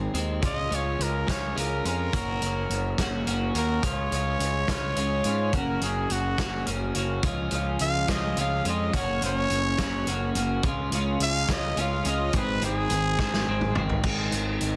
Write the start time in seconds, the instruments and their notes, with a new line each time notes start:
Already playing: clean electric guitar D#3 G#3 C4
0.14 picked electric bass D#2, clean electric guitar D#3 G#3 C4, closed hi-hat
0.42 picked electric bass C#2, clean electric guitar G#3 C#4 F4, trumpet D#5, kick, closed hi-hat
0.70 picked electric bass C#2, clean electric guitar G#3 C#4 F4, closed hi-hat
0.75 trumpet C#5
0.99 picked electric bass C#2, trumpet A#4, closed hi-hat
1.27 picked electric bass C#2, clean electric guitar G#3 C#4 F4, kick, snare, closed hi-hat
1.31 trumpet C#5
1.55 picked electric bass C#2, clean electric guitar G#3 C#4 F4, trumpet A#4, closed hi-hat
1.85 picked electric bass F2, clean electric guitar G#3 C#4 F4, trumpet A#4, closed hi-hat
2.13 picked electric bass F#1, clean electric guitar A#3 C#4 F#4, kick, closed hi-hat
2.41 picked electric bass F#1, clean electric guitar A#3 C#4 F#4, closed hi-hat
2.70 picked electric bass F#1, closed hi-hat
2.98 picked electric bass F#1, clean electric guitar A#3 C#4 F#4, kick, snare, closed hi-hat
3.27 picked electric bass F#1, clean electric guitar A#3 C#4 F#4, closed hi-hat
3.55 picked electric bass D#2, clean electric guitar A#3 C#4 F#4, trumpet A#4, closed hi-hat
3.83 picked electric bass C#2, clean electric guitar G#3 C#4 F4, trumpet C#5, kick, closed hi-hat
4.11 picked electric bass C#2, clean electric guitar G#3 C#4 F4, closed hi-hat
4.39 picked electric bass C#2, closed hi-hat
4.68 picked electric bass C#2, clean electric guitar G#3 C#4 F4, kick, snare, closed hi-hat
4.96 picked electric bass C#2, clean electric guitar G#3 C#4 F4, closed hi-hat
5.24 picked electric bass G#2, clean electric guitar G#3 C#4 F4, closed hi-hat
5.53 picked electric bass F#1, clean electric guitar A#3 C#4 F#4, trumpet A#4, kick, closed hi-hat
5.81 picked electric bass F#1, clean electric guitar A#3 C#4 F#4, trumpet G#4, closed hi-hat
6.10 picked electric bass F#1, trumpet F#4, closed hi-hat
6.38 picked electric bass F#1, clean electric guitar A#3 C#4 F#4, kick, snare, closed hi-hat
6.67 picked electric bass F#1, clean electric guitar A#3 C#4 F#4, closed hi-hat
6.95 picked electric bass F#1, clean electric guitar A#3 C#4 F#4, closed hi-hat
7.23 picked electric bass C#2, clean electric guitar F3 G#3 C#4 F4, kick, closed hi-hat
7.51 picked electric bass C#2, clean electric guitar F3 G#3 C#4 F4, closed hi-hat
7.79 picked electric bass C#2, trumpet F5, closed hi-hat
8.08 picked electric bass C#2, clean electric guitar F3 G#3 C#4 F4, trumpet D#5, kick, snare, closed hi-hat
8.37 picked electric bass C#2, clean electric guitar F3 G#3 C#4 F4, trumpet F5, closed hi-hat
8.65 picked electric bass F2, clean electric guitar F3 G#3 C#4 F4, trumpet D#5, closed hi-hat
8.93 picked electric bass F#1, clean electric guitar A#3 C#4 F#4, trumpet C#5, kick, closed hi-hat
9.22 picked electric bass F#1, clean electric guitar A#3 C#4 F#4, trumpet C#5, closed hi-hat
9.50 picked electric bass F#1, closed hi-hat
9.78 picked electric bass F#1, clean electric guitar A#3 C#4 F#4, kick, snare, closed hi-hat
10.07 picked electric bass F#1, clean electric guitar A#3 C#4 F#4, closed hi-hat
10.35 picked electric bass F#1, clean electric guitar A#3 C#4 F#4, closed hi-hat
10.63 picked electric bass C#2, clean electric guitar G#3 C#4 F4, kick, closed hi-hat
10.91 picked electric bass C#2, clean electric guitar G#3 C#4 F4, closed hi-hat
11.20 picked electric bass C#2, trumpet F5, closed hi-hat
11.48 picked electric bass C#2, clean electric guitar G#3 C#4 F4, trumpet D#5, kick, snare, closed hi-hat
11.76 picked electric bass C#2, clean electric guitar G#3 C#4 F4, trumpet F5, closed hi-hat
12.05 picked electric bass C#2, clean electric guitar G#3 C#4 F4, trumpet D#5, closed hi-hat
12.33 picked electric bass G#1, clean electric guitar D#3 G#3 C4, kick, closed hi-hat
12.37 trumpet B4
12.62 picked electric bass G#1, clean electric guitar D#3 G#3 C4, trumpet G#4, closed hi-hat
12.90 picked electric bass G#1, closed hi-hat
13.19 picked electric bass G#1, clean electric guitar D#3 G#3 C4, kick, snare
13.34 snare
13.47 picked electric bass G#1, clean electric guitar D#3 G#3 C4
13.61 mid tom
13.75 picked electric bass G#1, clean electric guitar D#3 G#3 C4, mid tom
13.90 floor tom
14.03 picked electric bass G#1, clean electric guitar D#3 G#3 C4, kick, crash
14.32 picked electric bass G#1, closed hi-hat
14.61 picked electric bass G#1, closed hi-hat